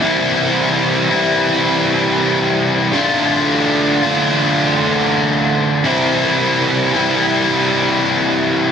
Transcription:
overdriven electric guitar
0.00 C3 E3 G3 C4 E4
1.09 C3 E3 G3 C4 E4
2.92 D3 A3 D4 F4
4.01 D3 A3 D4 F4
5.84 C3 E3 G3 C4 E4
6.94 C3 E3 G3 C4 E4

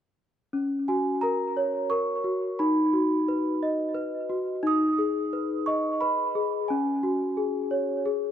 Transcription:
celesta
0.53 C#4
0.88 F#4 G#5
1.21 A#4 A#5
1.57 C#5
1.90 A#4 C#6
2.24 F#4
2.59 D#4 B5
2.93 F#4
3.28 B4
3.63 D#5
3.95 B4
4.30 F#4
4.63 D#4 D#6
4.98 G#4
5.33 B4
5.66 D#5 C#6
6.01 B4 B5
6.35 G#4
6.68 C#4 G#5
7.03 F#4
7.37 G#4
7.71 C#5
8.05 G#4

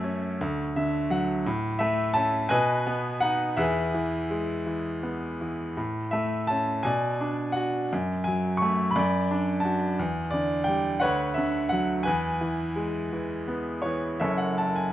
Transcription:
grand piano
Already playing: F#2 A3 F#4 A4 C#5
0.04 C#4
0.41 D2
0.76 D3 E5
1.10 F#3 F#5
1.46 A2
1.79 A3 E5
2.14 C#4 A5
2.49 B2 B4 D#5 G#5
2.87 B3
3.20 D#4 F#5
3.57 E2 G#4 B4 E5
3.94 E3
4.30 G#3
4.66 E3
5.03 B3
5.41 E3
5.77 A2
6.11 A3 E5
6.47 C#4 A5
6.83 B2 D5 G#5
7.21 D4
7.52 F#4 F#5
7.93 F#2
8.24 F#3 G#5
8.57 C#6
8.62 A3
8.91 B5
8.95 F#2 D5
9.31 D4
9.60 A5
9.65 F#4
9.99 E2
10.31 D3 D5
10.64 G3 G5
11.00 D2 B4 C#5 F#5
11.34 D3 E5
11.69 F#3 F#5
12.03 B4 G#5
12.07 E2
12.41 E3
12.76 G#3
13.13 E3
13.48 B3
13.82 E3 C#5
14.20 F#1 F#2 A4 C#5 E5
14.38 F#5
14.58 A5
14.76 G#5

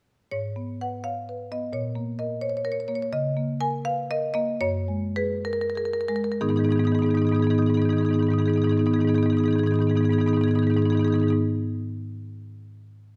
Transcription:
marimba
0.31 G#2 C#5
0.56 B3
0.81 B4 F#5
1.04 C#5 F5
1.29 B4
1.52 B3 D#5
1.73 A#2 C#5
1.95 A#3
2.19 A#4 D#5
2.41 C5 C#5
2.50 C#5
2.57 C#5
2.65 A#4 C#5
2.72 C#5
2.80 C#5
2.88 A#3 C#5
2.95 C#5
3.02 C#5
3.13 C#3 D#5
3.37 A#3
3.61 A#4 G#5
3.85 B4 F5
4.11 A#4 D#5
4.34 A#3 D#5
4.61 F#2 C#5
4.88 G#3
5.16 G#4 B4
5.45 A#4
5.53 A#4
5.61 A#4
5.70 A#4
5.75 G#4 A#4
5.85 A#4
5.93 A#4
6.01 A#4
6.08 G#3 A#4
6.16 A#4
6.24 A#4
6.32 A#4
6.41 G#2 D#3 B3 D#4 G#4
6.49 G#2 D#3 B3 D#4 G#4
6.56 D#3 B3 D#4 G#4
6.61 G#2 B3 D#4
6.65 D#3 G#4
6.69 G#2 B3 D#4 G#4
6.76 G#2 D#3 B3 D#4 G#4
6.84 G#2 D#3 B3 D#4 G#4
6.92 G#2 D#3 B3 D#4 G#4
6.99 D#3 B3 D#4
7.03 G#2 D#4 G#4
7.09 D#3 B3 G#4
7.14 G#2 D#3 B3 D#4
7.19 G#2 D#4 G#4
7.25 D#3 B3 G#4
7.29 G#2 B3 D#4
7.34 D#3 D#4 G#4
7.40 G#2 D#3 B3 G#4
7.44 B3 D#4
7.50 G#2 D#3 D#4 G#4
7.55 B3 G#4
7.59 G#2 D#3 B3 D#4
7.66 G#2 D#3 B3 D#4 G#4
7.74 D#3 B3 D#4 G#4
7.79 G#2 D#4 G#4
7.85 D#3 B3
7.89 G#2 D#3 B3 D#4 G#4
7.97 G#2 D#4 G#4
8.01 D#3 B3 D#4
8.06 G#2 B3 G#4
8.11 D#3 D#4 G#4
8.15 B3
8.19 G#2 D#3 B3 D#4 G#4
8.27 G#2 D#3 D#4 G#4
8.32 B3 D#4
8.38 G#2 D#3 B3 D#4 G#4
8.46 G#2 D#3 B3 D#4 G#4
8.53 G#2 D#3 B3 G#4
8.58 D#4
8.62 D#3 B3 D#4 G#4
8.68 G#2 D#4 G#4
8.72 D#3 B3
8.77 G#2 D#3 B3 D#4 G#4
8.86 G#2 B3 D#4 G#4
8.91 D#3 B3 D#4 G#4
8.96 G#2 D#3
9.00 B3 D#4 G#4
9.05 G#2 D#3 D#4 G#4
9.09 B3
9.15 G#2 D#3 B3 D#4 G#4
9.23 G#2 D#3 B3 D#4 G#4
9.30 D#3 B3 D#4 G#4
9.35 G#2 D#4 G#4
9.40 D#3 B3 D#4
9.45 G#2 D#3 B3 G#4
9.51 G#2 D#4 G#4
9.55 D#3 B3 D#4
9.59 B3 G#4
9.64 G#2 D#3 D#4 G#4
9.71 G#2 D#3 B3 D#4
9.76 B3 G#4
9.81 G#2 D#3 D#4 G#4
9.87 D#3 B3 D#4 G#4
9.92 G#2 B3
9.97 D#3 D#4 G#4
10.01 G#2 D#3 B3 D#4
10.05 G#2 G#4
10.10 D#3 B3 D#4 G#4
10.18 G#2 D#3 B3 D#4 G#4
10.26 G#2 D#3 B3 D#4 G#4
10.33 D#3 B3 D#4 G#4
10.37 G#2
10.41 B3 D#4 G#4
10.45 G#2 D#3 B3 D#4
10.51 D#3 G#4
10.55 G#2 B3 D#4 G#4
10.62 D#3 B3 D#4
10.67 G#2 D#3 D#4 G#4
10.71 B3 G#4
10.77 G#2 D#3 B3 D#4
10.82 G#2 B3 D#4 G#4
10.87 D#3 G#4
10.92 G#2 D#3 B3 D#4
10.97 B3 D#4 G#4
11.02 G#2 D#3 G#4
11.07 D#3 B3 D#4
11.12 G#2 B3 D#4 G#4
11.19 D#3 B3 G#4
11.23 G#2 D#3 D#4
11.28 G#2 B3 D#4 G#4

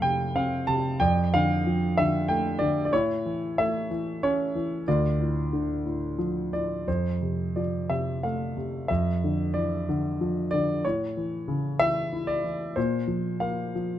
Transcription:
grand piano
Already playing: F2 C3 A3 A4 E5 F5
0.02 C3 G5
0.35 C4 F5
0.67 C3 A5
1.00 F2 D5 G5
1.34 D3 F5
1.66 F3
1.98 D3 E5
2.28 A3 G5
2.59 D3 D5
2.85 D5
2.92 A2 E4 C#5
3.26 E3
3.58 A3 E5
3.90 E3
4.23 C#4 C#5
4.55 E3
4.88 D2 F4 D5
5.20 A2
5.53 D3
5.85 A2
6.18 F3
6.53 A2 D5
6.88 F2 C5
7.22 C3
7.56 F3 D5
7.90 C3 E5
8.23 A3 F5
8.57 C3
8.88 F2 E5
9.24 D3
9.54 E3 D5
9.89 D3
10.21 F3
10.51 D3 D5
10.85 A2 C#5
11.17 E3
11.48 C#3
11.79 E3 E5
12.13 E4
12.27 D5
12.44 E3
12.76 A#2 C5
13.07 F3
13.40 A#3 F5
13.75 F3

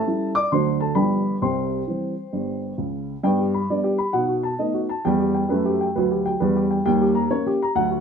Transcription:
upright piano
Already playing: A4 E5 A5
0.07 G3 C#4 E4
0.35 D5 D6
0.52 D2 D3 F#3 A3 D4 C5 C6
0.80 A4 A5
0.95 G1 G2 F3 G3 D4 B4 G5 B5
1.42 C2 C3 C5 G5 C6
1.87 E3 G3 C4
2.33 G1 G2
2.78 C#2 C#3
3.23 G2 B3 G5
3.38 G4
3.54 B5
3.70 G3 B3 D4 D5
3.84 G4
3.98 B5
4.13 B2 D#4 F#5
4.28 F#4
4.43 A5
4.59 A3 B3 D#4 D#5
4.74 F#4
4.89 A5
5.05 E2 G3 G5
5.19 G4
5.35 G5
5.49 F#2 A3 B4
5.65 G4
5.81 G5
5.96 D2 F#3 B4
6.11 G4
6.26 G5
6.40 E2 G3 B4
6.56 G4
6.71 G5
6.86 D#2 G3 G5
7.01 G4
7.15 A#5
7.30 A#3 C#4 C#5
7.47 G4
7.62 A#5
7.75 D2 F#3 F#5
7.91 F#4

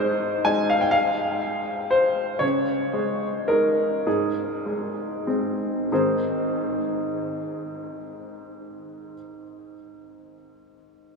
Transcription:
upright piano
Already playing: G#2 C5
0.00 G#3
0.45 G#3 D#4 G#5
0.70 F5
0.81 G5
0.91 F5
1.91 C5
2.39 C#3 C#5
2.93 G#3
3.48 G#3 D#4 A#4
4.07 G#2 G#4
4.66 G#3
5.27 G#3 C4
5.92 G#2 D#3 C4 D#4 G#4 C5

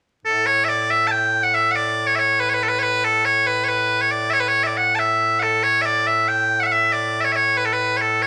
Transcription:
bagpipes
0.25 A2 A4
0.46 C#5
0.65 E5
0.69 D5
0.90 E5
1.07 G5 A5
1.43 F#5
1.54 E5
1.71 F#5
1.75 D5
2.07 C#5
2.16 C#5 E5
2.40 B4
2.49 C#5
2.54 B4
2.63 A4
2.68 B4
2.79 B4 C#5
3.04 A4
3.25 C#5
3.47 B4
3.64 C#5
3.68 B4
4.01 C#5
4.11 D5
4.30 C#5 E5
4.40 B4
4.48 C#5
4.63 D5 E5
4.77 F#5
4.95 E5 A5
5.39 A4 F#5
5.63 C#5
5.82 D5 E5
6.07 E5
6.28 G5
6.60 E5 F#5
6.66 F#5
6.72 E5
6.92 D5
7.21 E5
7.25 C#5
7.32 C#5 E5
7.57 B4
7.65 A4
7.73 B4
7.97 C#5
8.01 A4
8.22 C#5

